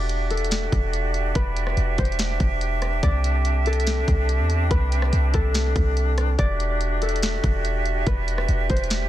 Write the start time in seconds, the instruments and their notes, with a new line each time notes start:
Already playing: 808-style bass E1, flute section D4 F#4 G4 D5 E5, harp A4 D5
0.09 closed hi-hat
0.30 harp A4, closed hi-hat
0.37 closed hi-hat
0.44 closed hi-hat
0.51 snare, closed hi-hat
0.72 808-style bass E1, kick, closed hi-hat
0.93 closed hi-hat
1.14 closed hi-hat
1.35 808-style bass E1, harp B4, kick, closed hi-hat
1.57 closed hi-hat
1.67 cross-stick
1.77 808-style bass E1, closed hi-hat
1.98 808-style bass E1, harp C5, kick, closed hi-hat
2.05 closed hi-hat
2.12 closed hi-hat
2.19 snare, closed hi-hat
2.40 808-style bass E1, kick, closed hi-hat
2.61 closed hi-hat
2.82 cross-stick, closed hi-hat
3.03 808-style bass C2, flute section C4 A4, harp D5, kick, closed hi-hat
3.24 closed hi-hat
3.45 closed hi-hat
3.66 harp A4, closed hi-hat
3.73 closed hi-hat
3.80 closed hi-hat
3.87 snare, closed hi-hat
4.08 808-style bass C2, kick, closed hi-hat
4.29 closed hi-hat
4.39 808-style bass E2
4.50 closed hi-hat
4.71 808-style bass C2, harp B4, kick, closed hi-hat
4.92 closed hi-hat
5.02 cross-stick
5.13 808-style bass C2, closed hi-hat
5.34 808-style bass C2, harp A4, kick, closed hi-hat
5.54 snare, closed hi-hat
5.76 808-style bass C2, kick, closed hi-hat
5.97 closed hi-hat
6.18 cross-stick, closed hi-hat
6.38 808-style bass E1, flute section F#4 G4 D5 E5, harp D5, kick, closed hi-hat
6.60 closed hi-hat
6.81 closed hi-hat
7.02 harp A4, closed hi-hat
7.09 closed hi-hat
7.16 closed hi-hat
7.23 snare, closed hi-hat
7.44 808-style bass E1, kick, closed hi-hat
7.65 closed hi-hat
7.86 closed hi-hat
8.07 808-style bass E1, harp B4, kick, closed hi-hat
8.28 closed hi-hat
8.38 cross-stick
8.49 808-style bass E1, closed hi-hat
8.70 808-style bass E1, harp C5, kick, closed hi-hat
8.77 closed hi-hat
8.84 closed hi-hat
8.90 snare, closed hi-hat